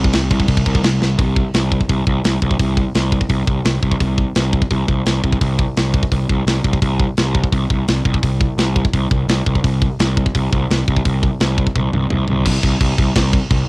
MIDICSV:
0, 0, Header, 1, 3, 480
1, 0, Start_track
1, 0, Tempo, 351906
1, 1626, Time_signature, 4, 2, 24, 8
1, 18668, End_track
2, 0, Start_track
2, 0, Title_t, "Picked electric bass"
2, 0, Program_c, 0, 34
2, 0, Note_on_c, 0, 36, 100
2, 175, Note_off_c, 0, 36, 0
2, 193, Note_on_c, 0, 36, 87
2, 408, Note_off_c, 0, 36, 0
2, 417, Note_on_c, 0, 36, 92
2, 651, Note_off_c, 0, 36, 0
2, 657, Note_on_c, 0, 36, 91
2, 891, Note_off_c, 0, 36, 0
2, 902, Note_on_c, 0, 36, 76
2, 1133, Note_off_c, 0, 36, 0
2, 1139, Note_on_c, 0, 36, 91
2, 1372, Note_off_c, 0, 36, 0
2, 1381, Note_on_c, 0, 36, 80
2, 1611, Note_off_c, 0, 36, 0
2, 1617, Note_on_c, 0, 36, 98
2, 1939, Note_off_c, 0, 36, 0
2, 2105, Note_on_c, 0, 36, 88
2, 2424, Note_off_c, 0, 36, 0
2, 2583, Note_on_c, 0, 36, 87
2, 2743, Note_off_c, 0, 36, 0
2, 2821, Note_on_c, 0, 36, 88
2, 2982, Note_off_c, 0, 36, 0
2, 3065, Note_on_c, 0, 36, 85
2, 3225, Note_off_c, 0, 36, 0
2, 3306, Note_on_c, 0, 36, 82
2, 3465, Note_off_c, 0, 36, 0
2, 3539, Note_on_c, 0, 36, 93
2, 3860, Note_off_c, 0, 36, 0
2, 4024, Note_on_c, 0, 36, 76
2, 4344, Note_off_c, 0, 36, 0
2, 4497, Note_on_c, 0, 36, 94
2, 4659, Note_off_c, 0, 36, 0
2, 4738, Note_on_c, 0, 36, 82
2, 4900, Note_off_c, 0, 36, 0
2, 4982, Note_on_c, 0, 36, 91
2, 5143, Note_off_c, 0, 36, 0
2, 5219, Note_on_c, 0, 36, 77
2, 5381, Note_off_c, 0, 36, 0
2, 5466, Note_on_c, 0, 36, 97
2, 5785, Note_off_c, 0, 36, 0
2, 5952, Note_on_c, 0, 36, 93
2, 6269, Note_off_c, 0, 36, 0
2, 6421, Note_on_c, 0, 36, 93
2, 6583, Note_off_c, 0, 36, 0
2, 6664, Note_on_c, 0, 36, 81
2, 6824, Note_off_c, 0, 36, 0
2, 6916, Note_on_c, 0, 36, 88
2, 7072, Note_off_c, 0, 36, 0
2, 7146, Note_on_c, 0, 36, 79
2, 7306, Note_off_c, 0, 36, 0
2, 7378, Note_on_c, 0, 36, 101
2, 7700, Note_off_c, 0, 36, 0
2, 7880, Note_on_c, 0, 36, 83
2, 8195, Note_off_c, 0, 36, 0
2, 8352, Note_on_c, 0, 36, 91
2, 8510, Note_off_c, 0, 36, 0
2, 8589, Note_on_c, 0, 36, 81
2, 8748, Note_off_c, 0, 36, 0
2, 8819, Note_on_c, 0, 36, 87
2, 8982, Note_off_c, 0, 36, 0
2, 9060, Note_on_c, 0, 36, 73
2, 9223, Note_off_c, 0, 36, 0
2, 9300, Note_on_c, 0, 36, 94
2, 9623, Note_off_c, 0, 36, 0
2, 9797, Note_on_c, 0, 36, 87
2, 10114, Note_off_c, 0, 36, 0
2, 10259, Note_on_c, 0, 36, 92
2, 10422, Note_off_c, 0, 36, 0
2, 10505, Note_on_c, 0, 36, 86
2, 10666, Note_off_c, 0, 36, 0
2, 10754, Note_on_c, 0, 36, 89
2, 10913, Note_off_c, 0, 36, 0
2, 10981, Note_on_c, 0, 36, 80
2, 11144, Note_off_c, 0, 36, 0
2, 11226, Note_on_c, 0, 36, 98
2, 11547, Note_off_c, 0, 36, 0
2, 11701, Note_on_c, 0, 36, 83
2, 12024, Note_off_c, 0, 36, 0
2, 12186, Note_on_c, 0, 36, 88
2, 12348, Note_off_c, 0, 36, 0
2, 12424, Note_on_c, 0, 36, 88
2, 12587, Note_off_c, 0, 36, 0
2, 12663, Note_on_c, 0, 36, 92
2, 12826, Note_off_c, 0, 36, 0
2, 12910, Note_on_c, 0, 36, 86
2, 13071, Note_off_c, 0, 36, 0
2, 13150, Note_on_c, 0, 36, 101
2, 13470, Note_off_c, 0, 36, 0
2, 13639, Note_on_c, 0, 36, 89
2, 13957, Note_off_c, 0, 36, 0
2, 14117, Note_on_c, 0, 36, 97
2, 14276, Note_off_c, 0, 36, 0
2, 14356, Note_on_c, 0, 36, 78
2, 14515, Note_off_c, 0, 36, 0
2, 14603, Note_on_c, 0, 36, 83
2, 14760, Note_off_c, 0, 36, 0
2, 14839, Note_on_c, 0, 36, 83
2, 14997, Note_off_c, 0, 36, 0
2, 15080, Note_on_c, 0, 36, 103
2, 15398, Note_off_c, 0, 36, 0
2, 15558, Note_on_c, 0, 36, 91
2, 15876, Note_off_c, 0, 36, 0
2, 16035, Note_on_c, 0, 36, 83
2, 16194, Note_off_c, 0, 36, 0
2, 16284, Note_on_c, 0, 36, 90
2, 16440, Note_off_c, 0, 36, 0
2, 16526, Note_on_c, 0, 36, 84
2, 16682, Note_off_c, 0, 36, 0
2, 16762, Note_on_c, 0, 36, 81
2, 16987, Note_off_c, 0, 36, 0
2, 16992, Note_on_c, 0, 36, 104
2, 17143, Note_off_c, 0, 36, 0
2, 17232, Note_on_c, 0, 36, 92
2, 17383, Note_off_c, 0, 36, 0
2, 17466, Note_on_c, 0, 36, 88
2, 17618, Note_off_c, 0, 36, 0
2, 17709, Note_on_c, 0, 36, 88
2, 17860, Note_off_c, 0, 36, 0
2, 17945, Note_on_c, 0, 36, 99
2, 18248, Note_off_c, 0, 36, 0
2, 18422, Note_on_c, 0, 36, 109
2, 18574, Note_off_c, 0, 36, 0
2, 18668, End_track
3, 0, Start_track
3, 0, Title_t, "Drums"
3, 58, Note_on_c, 9, 36, 82
3, 173, Note_on_c, 9, 49, 77
3, 184, Note_on_c, 9, 38, 107
3, 195, Note_off_c, 9, 36, 0
3, 310, Note_off_c, 9, 49, 0
3, 321, Note_off_c, 9, 38, 0
3, 412, Note_on_c, 9, 49, 69
3, 418, Note_on_c, 9, 36, 97
3, 539, Note_off_c, 9, 36, 0
3, 539, Note_on_c, 9, 36, 84
3, 548, Note_off_c, 9, 49, 0
3, 650, Note_on_c, 9, 49, 81
3, 658, Note_off_c, 9, 36, 0
3, 658, Note_on_c, 9, 36, 85
3, 778, Note_off_c, 9, 36, 0
3, 778, Note_on_c, 9, 36, 93
3, 787, Note_off_c, 9, 49, 0
3, 900, Note_off_c, 9, 36, 0
3, 900, Note_on_c, 9, 36, 84
3, 900, Note_on_c, 9, 49, 64
3, 1021, Note_off_c, 9, 36, 0
3, 1021, Note_on_c, 9, 36, 86
3, 1037, Note_off_c, 9, 49, 0
3, 1140, Note_on_c, 9, 49, 76
3, 1151, Note_on_c, 9, 38, 100
3, 1157, Note_off_c, 9, 36, 0
3, 1276, Note_off_c, 9, 49, 0
3, 1287, Note_off_c, 9, 38, 0
3, 1390, Note_on_c, 9, 38, 64
3, 1527, Note_off_c, 9, 38, 0
3, 1619, Note_on_c, 9, 46, 51
3, 1620, Note_on_c, 9, 36, 104
3, 1755, Note_off_c, 9, 46, 0
3, 1756, Note_off_c, 9, 36, 0
3, 1860, Note_on_c, 9, 36, 89
3, 1996, Note_off_c, 9, 36, 0
3, 2098, Note_on_c, 9, 46, 53
3, 2109, Note_on_c, 9, 38, 101
3, 2235, Note_off_c, 9, 46, 0
3, 2245, Note_off_c, 9, 38, 0
3, 2341, Note_on_c, 9, 36, 84
3, 2463, Note_off_c, 9, 36, 0
3, 2463, Note_on_c, 9, 36, 74
3, 2578, Note_on_c, 9, 46, 47
3, 2582, Note_off_c, 9, 36, 0
3, 2582, Note_on_c, 9, 36, 80
3, 2714, Note_off_c, 9, 46, 0
3, 2719, Note_off_c, 9, 36, 0
3, 2821, Note_on_c, 9, 36, 85
3, 2957, Note_off_c, 9, 36, 0
3, 3059, Note_on_c, 9, 46, 49
3, 3070, Note_on_c, 9, 38, 97
3, 3196, Note_off_c, 9, 46, 0
3, 3206, Note_off_c, 9, 38, 0
3, 3301, Note_on_c, 9, 36, 84
3, 3419, Note_off_c, 9, 36, 0
3, 3419, Note_on_c, 9, 36, 80
3, 3538, Note_on_c, 9, 46, 56
3, 3539, Note_off_c, 9, 36, 0
3, 3539, Note_on_c, 9, 36, 90
3, 3675, Note_off_c, 9, 46, 0
3, 3676, Note_off_c, 9, 36, 0
3, 3780, Note_on_c, 9, 36, 83
3, 3916, Note_off_c, 9, 36, 0
3, 4020, Note_on_c, 9, 46, 51
3, 4030, Note_on_c, 9, 38, 91
3, 4156, Note_off_c, 9, 46, 0
3, 4167, Note_off_c, 9, 38, 0
3, 4259, Note_on_c, 9, 36, 89
3, 4378, Note_off_c, 9, 36, 0
3, 4378, Note_on_c, 9, 36, 82
3, 4493, Note_on_c, 9, 46, 57
3, 4499, Note_off_c, 9, 36, 0
3, 4499, Note_on_c, 9, 36, 74
3, 4630, Note_off_c, 9, 46, 0
3, 4635, Note_off_c, 9, 36, 0
3, 4739, Note_on_c, 9, 36, 90
3, 4875, Note_off_c, 9, 36, 0
3, 4977, Note_on_c, 9, 46, 47
3, 4988, Note_on_c, 9, 38, 106
3, 5114, Note_off_c, 9, 46, 0
3, 5125, Note_off_c, 9, 38, 0
3, 5220, Note_on_c, 9, 36, 72
3, 5341, Note_off_c, 9, 36, 0
3, 5341, Note_on_c, 9, 36, 75
3, 5462, Note_off_c, 9, 36, 0
3, 5462, Note_on_c, 9, 36, 88
3, 5466, Note_on_c, 9, 46, 50
3, 5599, Note_off_c, 9, 36, 0
3, 5603, Note_off_c, 9, 46, 0
3, 5701, Note_on_c, 9, 36, 82
3, 5837, Note_off_c, 9, 36, 0
3, 5937, Note_on_c, 9, 46, 50
3, 5948, Note_on_c, 9, 38, 103
3, 6073, Note_off_c, 9, 46, 0
3, 6084, Note_off_c, 9, 38, 0
3, 6180, Note_on_c, 9, 36, 90
3, 6300, Note_off_c, 9, 36, 0
3, 6300, Note_on_c, 9, 36, 79
3, 6418, Note_on_c, 9, 46, 46
3, 6421, Note_off_c, 9, 36, 0
3, 6421, Note_on_c, 9, 36, 81
3, 6554, Note_off_c, 9, 46, 0
3, 6558, Note_off_c, 9, 36, 0
3, 6662, Note_on_c, 9, 36, 88
3, 6798, Note_off_c, 9, 36, 0
3, 6900, Note_on_c, 9, 46, 50
3, 6911, Note_on_c, 9, 38, 96
3, 7037, Note_off_c, 9, 46, 0
3, 7048, Note_off_c, 9, 38, 0
3, 7144, Note_on_c, 9, 36, 79
3, 7264, Note_off_c, 9, 36, 0
3, 7264, Note_on_c, 9, 36, 75
3, 7384, Note_off_c, 9, 36, 0
3, 7384, Note_on_c, 9, 36, 91
3, 7386, Note_on_c, 9, 46, 51
3, 7520, Note_off_c, 9, 36, 0
3, 7523, Note_off_c, 9, 46, 0
3, 7624, Note_on_c, 9, 36, 85
3, 7760, Note_off_c, 9, 36, 0
3, 7866, Note_on_c, 9, 46, 54
3, 7877, Note_on_c, 9, 38, 103
3, 8002, Note_off_c, 9, 46, 0
3, 8013, Note_off_c, 9, 38, 0
3, 8102, Note_on_c, 9, 36, 88
3, 8224, Note_off_c, 9, 36, 0
3, 8224, Note_on_c, 9, 36, 90
3, 8346, Note_off_c, 9, 36, 0
3, 8346, Note_on_c, 9, 36, 83
3, 8350, Note_on_c, 9, 46, 58
3, 8483, Note_off_c, 9, 36, 0
3, 8486, Note_off_c, 9, 46, 0
3, 8587, Note_on_c, 9, 36, 82
3, 8723, Note_off_c, 9, 36, 0
3, 8828, Note_on_c, 9, 46, 52
3, 8838, Note_on_c, 9, 38, 88
3, 8964, Note_off_c, 9, 46, 0
3, 8975, Note_off_c, 9, 38, 0
3, 9063, Note_on_c, 9, 36, 73
3, 9184, Note_off_c, 9, 36, 0
3, 9184, Note_on_c, 9, 36, 76
3, 9304, Note_off_c, 9, 36, 0
3, 9304, Note_on_c, 9, 36, 91
3, 9304, Note_on_c, 9, 46, 53
3, 9440, Note_off_c, 9, 36, 0
3, 9440, Note_off_c, 9, 46, 0
3, 9543, Note_on_c, 9, 36, 85
3, 9679, Note_off_c, 9, 36, 0
3, 9782, Note_on_c, 9, 46, 53
3, 9792, Note_on_c, 9, 38, 105
3, 9918, Note_off_c, 9, 46, 0
3, 9929, Note_off_c, 9, 38, 0
3, 10022, Note_on_c, 9, 36, 91
3, 10142, Note_off_c, 9, 36, 0
3, 10142, Note_on_c, 9, 36, 81
3, 10263, Note_off_c, 9, 36, 0
3, 10263, Note_on_c, 9, 36, 85
3, 10265, Note_on_c, 9, 46, 46
3, 10399, Note_off_c, 9, 36, 0
3, 10402, Note_off_c, 9, 46, 0
3, 10503, Note_on_c, 9, 36, 82
3, 10640, Note_off_c, 9, 36, 0
3, 10746, Note_on_c, 9, 46, 47
3, 10757, Note_on_c, 9, 38, 96
3, 10882, Note_off_c, 9, 46, 0
3, 10893, Note_off_c, 9, 38, 0
3, 10982, Note_on_c, 9, 36, 80
3, 11103, Note_off_c, 9, 36, 0
3, 11103, Note_on_c, 9, 36, 82
3, 11225, Note_off_c, 9, 36, 0
3, 11225, Note_on_c, 9, 36, 89
3, 11232, Note_on_c, 9, 46, 57
3, 11361, Note_off_c, 9, 36, 0
3, 11369, Note_off_c, 9, 46, 0
3, 11465, Note_on_c, 9, 36, 87
3, 11601, Note_off_c, 9, 36, 0
3, 11703, Note_on_c, 9, 46, 54
3, 11714, Note_on_c, 9, 38, 102
3, 11840, Note_off_c, 9, 46, 0
3, 11850, Note_off_c, 9, 38, 0
3, 11945, Note_on_c, 9, 36, 87
3, 12066, Note_off_c, 9, 36, 0
3, 12066, Note_on_c, 9, 36, 90
3, 12185, Note_off_c, 9, 36, 0
3, 12185, Note_on_c, 9, 36, 87
3, 12189, Note_on_c, 9, 46, 50
3, 12321, Note_off_c, 9, 36, 0
3, 12326, Note_off_c, 9, 46, 0
3, 12426, Note_on_c, 9, 36, 87
3, 12562, Note_off_c, 9, 36, 0
3, 12668, Note_on_c, 9, 46, 55
3, 12679, Note_on_c, 9, 38, 106
3, 12804, Note_off_c, 9, 46, 0
3, 12815, Note_off_c, 9, 38, 0
3, 12908, Note_on_c, 9, 36, 81
3, 13031, Note_off_c, 9, 36, 0
3, 13031, Note_on_c, 9, 36, 69
3, 13152, Note_off_c, 9, 36, 0
3, 13152, Note_on_c, 9, 36, 90
3, 13153, Note_on_c, 9, 46, 54
3, 13288, Note_off_c, 9, 36, 0
3, 13289, Note_off_c, 9, 46, 0
3, 13391, Note_on_c, 9, 36, 91
3, 13528, Note_off_c, 9, 36, 0
3, 13633, Note_on_c, 9, 46, 59
3, 13644, Note_on_c, 9, 38, 110
3, 13769, Note_off_c, 9, 46, 0
3, 13780, Note_off_c, 9, 38, 0
3, 13874, Note_on_c, 9, 36, 96
3, 13995, Note_off_c, 9, 36, 0
3, 13995, Note_on_c, 9, 36, 88
3, 14116, Note_off_c, 9, 36, 0
3, 14116, Note_on_c, 9, 36, 85
3, 14117, Note_on_c, 9, 46, 51
3, 14252, Note_off_c, 9, 36, 0
3, 14253, Note_off_c, 9, 46, 0
3, 14358, Note_on_c, 9, 36, 90
3, 14494, Note_off_c, 9, 36, 0
3, 14603, Note_on_c, 9, 46, 52
3, 14613, Note_on_c, 9, 38, 97
3, 14739, Note_off_c, 9, 46, 0
3, 14750, Note_off_c, 9, 38, 0
3, 14839, Note_on_c, 9, 36, 85
3, 14957, Note_off_c, 9, 36, 0
3, 14957, Note_on_c, 9, 36, 78
3, 15078, Note_off_c, 9, 36, 0
3, 15078, Note_on_c, 9, 36, 99
3, 15078, Note_on_c, 9, 46, 48
3, 15214, Note_off_c, 9, 36, 0
3, 15214, Note_off_c, 9, 46, 0
3, 15318, Note_on_c, 9, 36, 87
3, 15454, Note_off_c, 9, 36, 0
3, 15554, Note_on_c, 9, 46, 52
3, 15565, Note_on_c, 9, 38, 111
3, 15690, Note_off_c, 9, 46, 0
3, 15701, Note_off_c, 9, 38, 0
3, 15794, Note_on_c, 9, 36, 87
3, 15914, Note_off_c, 9, 36, 0
3, 15914, Note_on_c, 9, 36, 76
3, 16035, Note_off_c, 9, 36, 0
3, 16035, Note_on_c, 9, 36, 81
3, 16035, Note_on_c, 9, 48, 48
3, 16171, Note_off_c, 9, 48, 0
3, 16172, Note_off_c, 9, 36, 0
3, 16278, Note_on_c, 9, 47, 58
3, 16414, Note_off_c, 9, 47, 0
3, 16510, Note_on_c, 9, 45, 77
3, 16646, Note_off_c, 9, 45, 0
3, 16745, Note_on_c, 9, 43, 70
3, 16882, Note_off_c, 9, 43, 0
3, 16988, Note_on_c, 9, 49, 90
3, 16988, Note_on_c, 9, 57, 119
3, 16991, Note_on_c, 9, 36, 81
3, 17125, Note_off_c, 9, 49, 0
3, 17125, Note_off_c, 9, 57, 0
3, 17127, Note_off_c, 9, 36, 0
3, 17227, Note_on_c, 9, 49, 75
3, 17230, Note_on_c, 9, 36, 90
3, 17363, Note_off_c, 9, 49, 0
3, 17366, Note_off_c, 9, 36, 0
3, 17469, Note_on_c, 9, 36, 80
3, 17469, Note_on_c, 9, 49, 87
3, 17605, Note_off_c, 9, 36, 0
3, 17606, Note_off_c, 9, 49, 0
3, 17709, Note_on_c, 9, 36, 94
3, 17709, Note_on_c, 9, 49, 70
3, 17845, Note_off_c, 9, 36, 0
3, 17845, Note_off_c, 9, 49, 0
3, 17943, Note_on_c, 9, 49, 79
3, 17947, Note_on_c, 9, 36, 81
3, 17954, Note_on_c, 9, 38, 100
3, 18079, Note_off_c, 9, 49, 0
3, 18083, Note_off_c, 9, 36, 0
3, 18090, Note_off_c, 9, 38, 0
3, 18185, Note_on_c, 9, 36, 82
3, 18185, Note_on_c, 9, 49, 60
3, 18321, Note_off_c, 9, 49, 0
3, 18322, Note_off_c, 9, 36, 0
3, 18424, Note_on_c, 9, 36, 81
3, 18425, Note_on_c, 9, 49, 72
3, 18561, Note_off_c, 9, 36, 0
3, 18561, Note_off_c, 9, 49, 0
3, 18668, End_track
0, 0, End_of_file